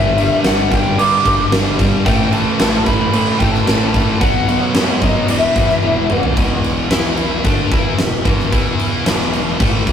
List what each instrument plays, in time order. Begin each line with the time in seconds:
Already playing: picked electric bass G1, distorted electric guitar G2 D3 G3 B3, lead electric guitar E5
0.18 distorted electric guitar G2 D3 G3, crash
0.44 picked electric bass G1, distorted electric guitar G2 D3 G3, lead electric guitar F#5, snare, crash
0.71 distorted electric guitar G2 D3 G3, lead electric guitar G5, kick, crash
0.98 picked electric bass G2, distorted electric guitar G2 D3 G3, lead electric guitar D6, crash
1.25 picked electric bass G1, distorted electric guitar G2 D3 G3, kick, crash
1.52 picked electric bass G1, distorted electric guitar G2 D3 G3, snare, crash
1.79 distorted electric guitar G2 D3 G3, kick, crash
2.06 picked electric bass A1, distorted electric guitar A2 E3 A3, lead electric guitar G5, kick, crash
2.33 distorted electric guitar A2 E3 A3, lead electric guitar A5, crash
2.60 picked electric bass A1, distorted electric guitar A2 E3 A3, snare, crash
2.85 distorted electric guitar A2 E3 A3, lead electric guitar B5, kick, crash
3.13 distorted electric guitar A2 E3 A3, picked electric bass A2, crash
3.39 picked electric bass A1, distorted electric guitar A2 E3 A3, lead electric guitar G5, kick, crash
3.51 lead electric guitar A5, snare
3.67 picked electric bass A1, distorted electric guitar A2 E3 A3, snare, crash
3.93 distorted electric guitar A2 E3 A3, lead electric guitar A5, kick, crash
4.20 picked electric bass B1, distorted electric guitar B2 F#3 B3, lead electric guitar F#5, kick, crash
4.48 distorted electric guitar B2 F#3 B3, crash
4.61 lead electric guitar C#5
4.75 picked electric bass F#2, distorted electric guitar B2 F#3 B3, snare, crash
5.01 distorted electric guitar B2 F#3 B3, lead electric guitar D#5, kick, crash
5.28 picked electric bass E1, distorted electric guitar E2 B2 E3, lead electric guitar E5, crash
5.55 picked electric bass E1, distorted electric guitar E2 B2 E3, kick, crash
5.69 snare
5.83 picked electric bass E1, distorted electric guitar E2 B2 E3, high tom
6.09 distorted electric guitar E2 B2 E3, mid tom
6.23 floor tom
6.37 picked electric bass E1, distorted electric guitar E2 B2 E3, kick, crash
6.64 crash
6.90 picked electric bass E2, distorted electric guitar E3 B3 E4, snare, crash
7.04 snare
7.17 crash
7.44 picked electric bass D2, distorted electric guitar D3 A3 D4, kick, crash
7.72 picked electric bass E2, distorted electric guitar E3 B3 E4, kick, crash
7.98 picked electric bass E1, distorted electric guitar E2 B2, snare, crash
8.25 picked electric bass E1, distorted electric guitar E2 B2 E3, kick, crash
8.39 snare
8.52 picked electric bass E2, distorted electric guitar E3 B3 E4, kick, crash
8.79 crash
9.05 picked electric bass E1, distorted electric guitar E2 B2 E3, snare, crash
9.20 snare
9.33 crash
9.59 picked electric bass A1, distorted electric guitar A2 E3 A3, kick, crash
9.86 picked electric bass E1, distorted electric guitar E2 B2 E3, kick, crash